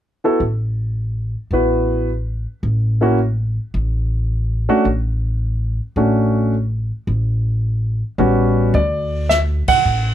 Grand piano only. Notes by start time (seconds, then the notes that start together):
0.24 B3 E4 F#4 A4
1.52 B3 E4 F#4 B4
3.01 A#3 C#4 E4 F#4
4.69 A3 C#4 D4 F#4
5.97 A3 C#4 D4 F#4
8.18 G3 B3 C#4 F#4
8.75 D5
9.29 E5
9.68 F#5